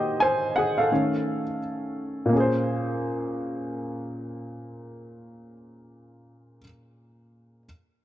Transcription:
Already playing: D#3 A#3 D#4 F#4 G4 C5 D#5
0.20 C5 G#5
0.56 G#4 F#5
0.78 A4 F5
0.91 D#3 A3 C#4
2.26 A#2 A#3
2.33 C#4 G#4
2.40 C5

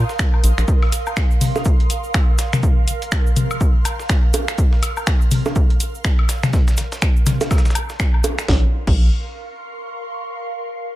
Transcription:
Already playing: A#4 F5 C6 D#6
0.09 snare, cabasa
0.19 finger snap, kick, snare, cabasa, shaker
0.34 low woodblock
0.44 A#1, closed hi-hat, cabasa, shaker
0.58 A#1, finger snap, closed hi-hat, cabasa
0.68 kick, cabasa, shaker
0.82 snare, high woodblock
0.92 snare, closed hi-hat, cabasa, shaker
1.06 cabasa, low woodblock
1.16 finger snap, kick, snare, cabasa, shaker
1.31 cabasa
1.41 closed hi-hat, open hi-hat, mid tom, cabasa
1.51 F6, cabasa
1.56 snare, high bongo
1.65 kick, cabasa, shaker
1.80 closed hi-hat
1.90 closed hi-hat, cabasa, shaker
2.04 cabasa
2.14 finger snap, kick, snare, cabasa, high woodblock, shaker
2.38 snare, closed hi-hat, cabasa, shaker
2.53 finger snap, snare, mid tom, cabasa, shaker
2.63 kick, cabasa, shaker
2.88 closed hi-hat, cabasa, shaker
3.02 closed hi-hat, cabasa
3.12 finger snap, kick, snare, cabasa, shaker
3.27 cabasa
3.36 closed hi-hat, mid tom, cabasa, shaker
3.51 cabasa, high woodblock
3.61 kick, cabasa, shaker
3.85 closed hi-hat, cabasa, low woodblock, shaker
4.00 snare, cabasa
4.09 finger snap, kick, snare, cabasa, shaker
4.33 closed hi-hat, high bongo, cabasa, shaker
4.48 finger snap, closed hi-hat, cabasa
4.58 kick, cabasa, shaker
4.73 snare
4.83 snare, closed hi-hat, cabasa, high woodblock, shaker
4.97 cabasa, low woodblock
5.07 finger snap, kick, snare, cabasa, shaker
5.21 cabasa
5.31 closed hi-hat, open hi-hat, mid tom, cabasa
5.45 snare, high bongo, cabasa
5.56 kick, cabasa, shaker
5.70 closed hi-hat
5.80 closed hi-hat, cabasa, shaker
5.95 cabasa
6.05 finger snap, kick, snare, cabasa, shaker
6.19 high woodblock
6.29 snare, closed hi-hat, cabasa, shaker
6.43 finger snap, snare, mid tom, cabasa, shaker
6.53 kick, snare, cabasa, shaker
6.68 snare, cabasa, shaker
6.77 snare, closed hi-hat, cabasa, shaker
6.92 snare, cabasa, shaker
7.02 finger snap, kick, snare, cabasa, shaker
7.16 cabasa
7.26 snare, closed hi-hat, mid tom, cabasa, shaker
7.40 snare, high bongo, cabasa, shaker
7.51 kick, snare, cabasa, high woodblock, shaker
7.58 snare, shaker
7.65 snare, shaker
7.70 snare, shaker
7.75 closed hi-hat, cabasa, low woodblock, shaker
7.89 snare, cabasa
8.00 finger snap, kick, snare, cabasa, shaker
8.14 low woodblock
8.24 closed hi-hat, high bongo, cabasa, shaker
8.39 finger snap, snare, cabasa, shaker
8.48 A#1 A#4, kick, snare
8.57 F5
8.65 C6
8.71 C#6
8.87 A#1, kick, crash

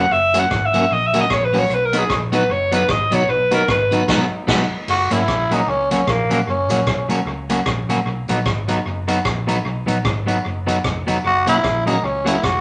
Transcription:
Already playing: F#5
0.11 F#1 E5
0.34 F#3 A#3 C#4 F#4 A#4, closed hi-hat, tambourine
0.39 F#5
0.51 G#1, kick, cross-stick
0.66 E5
0.73 F#3 A#3 C#4 F#4 A#4, closed hi-hat, tambourine
0.90 A#1 D#5
1.07 E5
1.13 F#3 A#3 C#4 F#4 A#4, closed hi-hat, tambourine
1.21 D#5
1.30 A#1 C#5, kick, cross-stick
1.45 B4
1.53 F#3 A#3 C#4 F#4 A#4, open hi-hat, tambourine
1.59 C#5
1.70 B1, hi-hat pedal
1.74 B4
1.85 A#4
1.93 F#3 B3 D#4 F#4 B4, closed hi-hat, tambourine
1.98 G#4
2.10 A#1, kick, cross-stick
2.32 F#3 B3 D#4 F#4 B4, closed hi-hat, tambourine
2.49 F#1 C#5
2.72 F#3 B3 D#4 F#4 B4, closed hi-hat, tambourine
2.89 G#1 D#5, kick, cross-stick
3.11 B1 F#3 B3 D#4 F#4 B4 C#5, closed hi-hat, tambourine
3.28 B1 B4
3.51 F#3 B3 D#4 F#4 A#4 B4, closed hi-hat, tambourine
3.68 G#1 B4, kick, cross-stick
3.91 F#3 B3 D#4 F#4 B4, closed hi-hat, tambourine
4.08 B1 F#3 B3 D#4 F#4 B4, kick, snare, crash
4.47 B1 F#3 B3 D#4 F#4 B4, kick, snare, crash
4.88 F#1 F#4, crash
5.11 G#1 F#3 A#3 C#4 E4 F#4, closed hi-hat, tambourine
5.28 A#1, kick, cross-stick
5.51 F#3 A#3 C#4 D#4 F#4, closed hi-hat, tambourine
5.67 C#2 C#4
5.91 F#3 A#3 C#4 F#4, closed hi-hat, tambourine
6.07 A#1 A#3, kick, cross-stick
6.30 F#3 A#3 C#4 F#4, closed hi-hat, tambourine
6.47 F#1 C#4
6.69 A#1 F#3 A#3 C#4 F#4, closed hi-hat, tambourine
6.87 B1, kick, cross-stick
7.09 F#3 A#3 C#4 F#4, closed hi-hat, tambourine
7.25 C#2
7.50 F#3 A#3 C#4 F#4, closed hi-hat, tambourine
7.66 A#1, kick, cross-stick
7.89 F#3 A#3 C#4 F#4, closed hi-hat, tambourine
8.06 B1
8.28 A#1 F#3 B3 D#4 F#4, closed hi-hat, tambourine
8.45 G#1, kick, cross-stick
8.68 F#3 B3 D#4 F#4, closed hi-hat, tambourine
8.85 F#1
9.08 F#3 B3 D#4 F#4, closed hi-hat, tambourine
9.25 A#1, kick, cross-stick
9.47 F#3 B3 D#4 F#4, closed hi-hat, tambourine
9.65 B1
9.86 A#1 F#3 B3 D#4 F#4, closed hi-hat, tambourine
10.04 G#1, kick, cross-stick
10.26 F#3 B3 D#4 F#4, closed hi-hat, tambourine
10.45 F#1
10.67 F#3 B3 D#4 F#4, closed hi-hat, tambourine
10.84 F1, kick, cross-stick
11.07 F#3 B3 D#4 F#4, closed hi-hat, tambourine
11.25 F#1 F#4
11.46 B1 F#3 A#3 C#4 E4 F#4 A#4, closed hi-hat, tambourine
11.63 A#1, kick, cross-stick
11.86 F#3 A#3 C#4 D#4 F#4 A#4, closed hi-hat, tambourine
12.03 C#2 C#4
12.25 F#3 A#3 C#4 E4 F#4 A#4, closed hi-hat, tambourine
12.43 F1 F#4, kick, cross-stick

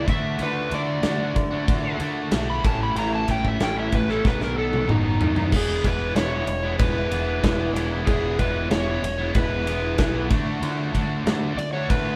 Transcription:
0.05 D2 D3 A3 D4 F#4, kick, ride
0.09 E5
0.23 A3 D4 F#4
0.39 D2 D3 A3 D4 F#4, ride
0.43 B4
0.71 D2 D3 A3 D4 F#4 D5, ride
1.03 D2 D3 A3 D4 F#4, snare, ride
1.19 A3 D4 F#4
1.35 D2, muted distorted electric guitar stroke, kick, ride
1.51 A3 D4 F#4
1.68 D2, kick, ride
1.99 D2 D3 A3 D4 F#4, ride
2.31 B1 D3 A3 D4 F#4, snare, ride
2.48 A3 D4 F#4 B5
2.64 A1 A2 E3 A3 C#4 E4 A5, kick, ride
2.81 A3 C#4 E4 B5
2.95 A1 A2 E3 A3 C#4 E4 A#5, ride
3.15 A5
3.28 A1 E3 A3 C#4 G5, kick, snare, ride
3.32 E4
3.45 E5, kick
3.60 A1 A2 E3 A3 C#4 E4 G5, snare, ride
3.77 A3 C#4 E4 E5
3.92 A1 B4, muted distorted electric guitar stroke, kick, ride
4.08 A3 C#4 E4 A4, snare
4.24 B1 B2 D#3 F#3 B3 D#4 B4, kick, snare
4.41 A#4, snare
4.56 D#3 F#3 B3 D#4 A4
4.73 high tom
4.86 F#1 B2 D#3 F#3 B3 D#4, mid tom
4.90 D#4
5.03 F#3 B3 D#4
5.19 F#2 D#3 F#3 B3 D#4, floor tom
5.35 F#3 B3 D#4, floor tom
5.51 E1 E3 G#3 B3 E4, kick, crash
5.56 G#4
5.83 E1 E3 G#3 B3 E4 B4, kick, ride
6.15 E1 E3 G#3 B3 E4 C#5, snare, ride
6.31 G#3 B3 E4
6.47 E1, muted distorted electric guitar stroke, ride
6.63 G#3 B3 E4
6.79 E1 B4, kick, ride
7.10 E1 E3 G#3 B3 E4, ride
7.42 E1 E3 G#3 B3 E4, kick, snare, ride
7.57 G#3 B3 E4
7.73 E1 E3 G#3, ride
7.77 B3 E4
7.91 G#3 B3 E4
8.06 E1 E3 G#3 B3 E4 G#4, kick, ride
8.39 E1 E3 G#3 B3 E4 B4, kick, ride
8.70 E1 E3 G#3 B3 E4 C#5, snare, ride
8.87 G#3 B3 E4
9.02 E1, muted distorted electric guitar stroke, ride
9.18 G#3 B3 E4
9.35 E1 B4, kick, ride
9.67 E3 G#3 B3 E4, ride
9.97 B1 E3 G#3 B3 E4, kick, snare, ride
10.13 G#3 B3 E4
10.29 D2 D3 A3 D4 F#4, kick, ride
10.46 A3 D4 F#4
10.61 D2 D3 A3 D4 F#4, ride
10.93 D2 D3 A3 D4 F#4, kick, ride
11.25 D2 D3 A3 D4 F#4, snare, ride
11.42 A3 D4 F#4
11.57 D2 D5, muted distorted electric guitar stroke, ride
11.73 A3 D4 F#4 C#5
11.89 D2 B4, kick, ride

